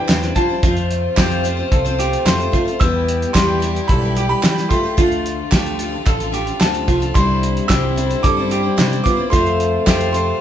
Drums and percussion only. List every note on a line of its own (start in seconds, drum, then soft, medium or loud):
0.09 snare loud
0.09 clap loud
0.09 closed hi-hat medium
0.22 snare soft
0.22 closed hi-hat soft
0.36 kick medium
0.36 closed hi-hat medium
0.63 kick loud
0.63 closed hi-hat medium
0.77 closed hi-hat soft
0.91 closed hi-hat medium
1.17 kick medium
1.17 snare loud
1.17 clap loud
1.17 closed hi-hat medium
1.31 closed hi-hat soft
1.45 closed hi-hat medium
1.72 kick loud
1.72 closed hi-hat medium
1.86 closed hi-hat soft
2.00 closed hi-hat medium
2.13 closed hi-hat soft
2.27 snare loud
2.27 clap loud
2.27 closed hi-hat loud
2.41 closed hi-hat soft
2.53 kick medium
2.53 closed hi-hat medium
2.68 closed hi-hat soft
2.81 kick loud
2.81 closed hi-hat medium
3.08 closed hi-hat medium
3.22 closed hi-hat soft
3.35 kick medium
3.35 snare loud
3.35 clap loud
3.35 closed hi-hat loud
3.62 closed hi-hat medium
3.76 closed hi-hat soft
3.89 kick loud
3.89 closed hi-hat medium
4.17 closed hi-hat medium
4.43 snare loud
4.43 clap loud
4.43 closed hi-hat medium
4.58 snare soft
4.58 closed hi-hat soft
4.71 kick medium
4.71 closed hi-hat medium
4.98 kick loud
4.98 closed hi-hat medium
5.12 closed hi-hat soft
5.26 closed hi-hat medium
5.52 kick medium
5.52 snare loud
5.52 clap loud
5.52 closed hi-hat medium
5.66 closed hi-hat soft
5.79 closed hi-hat medium
6.06 kick loud
6.06 clap medium
6.06 closed hi-hat medium
6.20 closed hi-hat soft
6.34 closed hi-hat medium
6.47 closed hi-hat soft
6.61 snare loud
6.61 clap loud
6.61 closed hi-hat medium
6.75 closed hi-hat soft
6.88 kick medium
6.88 closed hi-hat medium
7.02 closed hi-hat soft
7.15 kick loud
7.15 closed hi-hat loud
7.43 closed hi-hat medium
7.57 closed hi-hat soft
7.69 kick medium
7.69 snare loud
7.69 clap loud
7.69 closed hi-hat loud
7.98 closed hi-hat medium
8.11 closed hi-hat soft
8.24 kick loud
8.24 closed hi-hat loud
8.51 closed hi-hat medium
8.78 snare loud
8.78 clap loud
8.78 closed hi-hat medium
8.93 closed hi-hat soft
9.06 kick medium
9.06 closed hi-hat medium
9.33 kick loud
9.33 closed hi-hat medium
9.46 closed hi-hat soft
9.60 closed hi-hat medium
9.87 kick medium
9.87 snare loud
9.87 clap loud
9.87 closed hi-hat medium
10.01 closed hi-hat soft
10.14 closed hi-hat medium